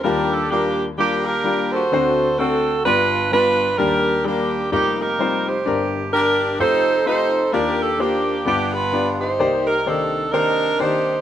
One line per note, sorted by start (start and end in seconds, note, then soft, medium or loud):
0.04 1.88 D#2 medium
0.04 1.88 D#3 medium
0.04 0.38 G3 loud
0.04 0.38 D4 medium
0.04 0.51 D4 medium
0.04 0.39 F4 medium
0.04 0.38 G4 medium
0.04 0.50 G4 medium
0.04 0.32 A#4 loud
0.04 0.39 A#4 loud
0.32 0.51 A4 medium
0.51 0.85 G3 medium
0.51 0.85 A#3 medium
0.51 0.85 D4 medium
0.51 0.86 F4 medium
0.51 0.85 G4 loud
0.51 0.86 G4 medium
0.51 0.86 A#4 medium
0.98 1.32 G3 medium
0.98 1.88 A#3 medium
0.98 1.32 D4 medium
0.98 1.26 D4 medium
0.98 1.33 F4 medium
0.98 1.24 G4 loud
0.98 1.32 G4 medium
0.98 1.33 A#4 medium
1.26 1.88 D4 medium
1.26 1.89 G4 medium
1.26 1.73 A#4 loud
1.44 1.78 G3 medium
1.44 1.79 A#3 medium
1.44 1.79 D4 medium
1.44 1.79 F4 medium
1.44 1.79 G4 medium
1.72 2.37 F#4 medium
1.72 2.37 A4 medium
1.72 2.38 C5 loud
1.92 2.82 D2 medium
1.92 2.82 D3 medium
1.92 2.26 A3 medium
1.92 2.26 C4 medium
1.92 2.26 D4 medium
1.92 2.26 F#4 medium
1.92 2.27 C5 loud
2.38 2.73 A3 medium
2.38 2.82 C4 medium
2.38 2.73 C4 medium
2.38 2.73 D4 medium
2.38 2.82 F#4 medium
2.38 2.73 F#4 medium
2.38 2.85 A4 loud
2.38 2.73 C5 medium
2.85 3.75 G1 medium
2.85 3.75 G2 medium
2.85 3.19 G3 medium
2.85 3.19 B3 medium
2.85 3.19 D4 medium
2.85 3.32 D4 medium
2.85 3.31 F4 medium
2.85 3.20 F4 medium
2.85 3.29 B4 loud
2.85 3.20 B4 medium
3.31 3.66 G3 medium
3.31 3.66 B3 medium
3.31 3.66 D4 medium
3.31 3.76 D4 medium
3.31 3.76 F4 medium
3.31 3.67 F4 medium
3.31 3.76 B4 loud
3.31 3.67 B4 medium
3.78 4.68 D#2 medium
3.78 4.68 D#3 medium
3.78 4.12 G3 loud
3.78 4.13 A#3 loud
3.78 4.13 D4 medium
3.78 4.25 D4 medium
3.78 4.24 G4 medium
3.78 4.13 G4 medium
3.78 4.26 A#4 loud
3.78 4.13 A#4 loud
4.24 4.59 G3 medium
4.24 4.59 A#3 medium
4.24 4.69 A#3 medium
4.24 4.59 D4 medium
4.24 4.69 D4 medium
4.24 4.60 G4 medium
4.24 4.71 G4 loud
4.24 4.60 A#4 medium
4.72 5.62 F1 medium
4.72 5.62 F2 medium
4.72 5.06 G3 medium
4.72 5.62 A#3 medium
4.72 5.06 C4 medium
4.72 5.06 D#4 medium
4.72 5.00 D#4 medium
4.72 5.07 F4 medium
4.72 4.98 G4 loud
4.72 5.07 A#4 medium
5.01 5.63 D#4 medium
5.01 5.47 G4 medium
5.01 5.47 A#4 loud
5.19 5.53 G3 medium
5.19 5.53 C4 medium
5.19 5.53 D#4 medium
5.19 5.54 F4 medium
5.19 5.54 C5 loud
5.48 6.12 G4 medium
5.48 5.94 C5 loud
5.66 6.56 G1 medium
5.66 6.56 G2 medium
5.66 6.00 D4 loud
5.66 6.00 G4 medium
5.66 6.01 A#4 loud
6.12 6.46 D4 medium
6.12 6.57 D4 medium
6.12 6.47 G4 medium
6.12 6.56 G4 medium
6.12 6.57 A#4 loud
6.12 6.47 A#4 medium
6.59 7.49 F1 medium
6.59 7.49 F2 medium
6.59 6.93 A3 medium
6.59 6.93 D#4 medium
6.59 7.06 D#4 medium
6.59 6.94 F4 medium
6.59 6.94 G4 medium
6.59 7.06 A4 medium
6.59 7.06 C5 loud
6.59 6.94 C5 medium
7.06 7.40 A3 medium
7.06 7.40 D#4 medium
7.06 7.50 D#4 medium
7.06 7.40 F4 medium
7.06 7.40 G4 medium
7.06 7.50 A4 medium
7.06 7.50 C5 loud
7.06 7.41 D#5 medium
7.53 8.42 D#2 medium
7.53 8.43 D#3 medium
7.53 7.87 A#3 loud
7.53 7.87 D4 medium
7.53 8.00 D4 medium
7.53 7.87 F4 medium
7.53 8.00 G4 medium
7.53 7.87 G4 medium
7.53 7.80 A#4 loud
7.53 7.87 D5 loud
7.81 8.00 A4 medium
7.98 8.33 A#3 medium
7.98 8.44 A#3 medium
7.98 8.33 D4 medium
7.98 8.44 D4 medium
7.98 8.33 F4 medium
7.98 8.33 G4 medium
7.98 8.45 G4 loud
7.98 8.34 C5 medium
8.45 9.36 G1 medium
8.45 9.36 G2 medium
8.45 8.80 B3 medium
8.45 9.36 B3 medium
8.45 8.80 D4 medium
8.45 8.73 D4 medium
8.45 8.80 F4 medium
8.45 8.72 G4 loud
8.45 8.81 G4 medium
8.45 8.81 D5 medium
8.74 9.36 D4 medium
8.74 9.36 F4 medium
8.74 9.06 B4 loud
8.92 9.27 B3 medium
8.92 9.27 D4 medium
8.92 9.27 F4 medium
8.92 9.27 G4 medium
8.92 9.28 D5 medium
9.20 9.86 D#4 medium
9.20 10.10 G4 medium
9.20 9.64 C5 loud
9.39 11.21 C2 medium
9.39 11.21 C3 medium
9.39 9.73 A#3 medium
9.39 9.74 D#4 medium
9.39 9.74 G4 medium
9.39 9.74 C5 loud
9.39 9.74 D5 medium
9.67 9.86 A#4 loud
9.86 10.20 D#3 medium
9.86 10.20 A#3 medium
9.86 10.32 D4 medium
9.86 10.32 D#4 medium
9.86 10.20 G4 medium
9.86 10.33 A4 loud
9.86 10.21 C5 medium
9.86 10.20 D5 medium
10.32 10.67 D#3 medium
10.32 10.66 A#3 medium
10.32 11.21 D4 medium
10.32 10.79 D#4 medium
10.32 10.67 G4 medium
10.32 10.80 A#4 loud
10.32 10.67 C5 medium
10.32 10.67 D5 medium
10.79 11.14 D#3 medium
10.79 11.13 A#3 medium
10.79 11.21 D#4 medium
10.79 11.14 G4 medium
10.79 11.21 G4 medium
10.79 11.14 C5 medium
10.79 11.21 C5 loud
10.79 11.13 D5 medium